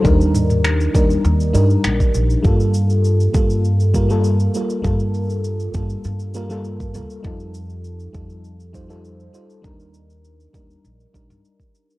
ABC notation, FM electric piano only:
X:1
M:4/4
L:1/16
Q:1/4=100
K:Gm
V:1 name="FM electric piano"
[G,DEB]6 [G,DEB]4 [G,DEB] z4 z | [G,B,FA]6 [G,B,FA]4 [G,B,FB] [G,B,FA]3 [G,B,FB] z | [G,B,FA]6 [G,B,FA]4 [G,B,FB] [G,B,FA]3 [G,B,FB] z | [G,EFA]6 [G,EFA]4 [G,EFc] [G,EFA]3 [G,EFc] z |
[G,DEB]6 [G,DEB]4 [G,DEB] z4 z |]